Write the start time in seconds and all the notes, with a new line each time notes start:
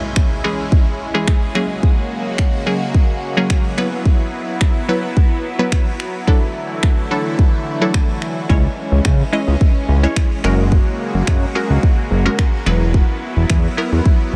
Already playing: G#3 C#4 E4, impact
0.16 finger snap, kick
0.44 E3 G#3 C#4 G#4
0.72 kick
1.14 E3 G#3 C#4 G#4
1.28 finger snap, kick
1.55 C#3 F#3 A#3 C#4 F#4 G#4, finger snap
1.83 kick
2.38 finger snap, kick
2.66 F#3 A#3 C#4 G#4
2.94 kick
3.37 F#3 A#3 C#4 G#4
3.50 finger snap, kick
3.77 F#3 B3 E4 B4, finger snap
4.06 kick
4.61 finger snap, kick
4.88 F#3 B3 E4 B4
5.17 kick
5.59 F#3 B3 E4 B4
5.72 finger snap, kick
6.00 finger snap
6.27 D3 E3 F#3 A3 D4 E4 A4, kick
6.83 finger snap, kick
7.11 F#3 D4 E4 A4
7.39 kick
7.81 F#3 D4 E4 A4
7.94 finger snap, kick
8.22 finger snap
8.49 C#2 G#3 C#4 E4 C#5, kick
8.92 C#2
9.05 C#3, finger snap, kick
9.33 G#3 C#4 E4 D#5
9.48 C#2
9.61 kick
9.89 C#2
10.03 G#3 C#4 E4 C#5
10.16 finger snap, kick
10.44 F#1 C#3 F#3 G#3 A#3 C#4 F#4 A#4, finger snap
10.72 kick
11.15 F#1
11.27 F#2, finger snap, kick
11.55 G#3 C#4 F#4 A#4
11.70 C#2
11.83 kick
12.11 F#1
12.25 G#3 C#4 F#4 A#4
12.39 finger snap, kick
12.66 E1 F#3 B3 E4 B4, finger snap
12.94 kick
13.37 E1
13.50 E2, finger snap, kick
13.77 F#3 B3 E4 A#4
13.92 E2
14.06 kick